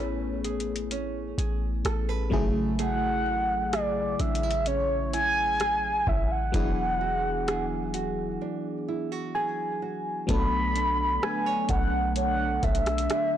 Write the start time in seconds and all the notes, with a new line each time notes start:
Already playing: A1 A3 B3 C#4 E4 G#4 B4 C#5
0.44 G#4, closed hi-hat
0.60 closed hi-hat
0.76 closed hi-hat
0.91 C#4, closed hi-hat
1.38 A1 G#4, closed hi-hat
1.85 A1 A4, cross-stick, closed hi-hat
2.09 B4
2.30 A1 C#3 F#3 A3 E4 G#4, kick
2.79 A3 G#4 F#5, closed hi-hat
3.26 E4
3.73 G#4 D5, cross-stick, closed hi-hat
4.20 A1 D4 E5, closed hi-hat
4.35 closed hi-hat
4.43 E4
4.51 closed hi-hat
4.66 C#4 C#5, closed hi-hat
5.13 E4 G#5, closed hi-hat
5.60 G#4, cross-stick, closed hi-hat
6.07 A1 E4 E5, kick
6.31 F#5
6.52 E1 E3 F#3 B3 D4 E4 G#4, kick, closed hi-hat
7.01 F#4
7.48 G#4, cross-stick, closed hi-hat
7.94 F#4, closed hi-hat
8.41 D4
8.88 E4
9.12 F#4
9.35 G#4 G#5
9.82 F#4
10.27 B1 D3 F#3 A3 B3 D4 A4 B5, kick, closed hi-hat
10.76 D4, closed hi-hat
11.23 B4 G#5, cross-stick
11.46 C#5
11.69 B1 A4 F#5, kick, closed hi-hat
12.16 C#5 F#5, closed hi-hat
12.63 B1 A4 E5, kick, closed hi-hat
12.75 closed hi-hat
12.86 cross-stick, closed hi-hat
12.98 closed hi-hat
13.10 D4, cross-stick, closed hi-hat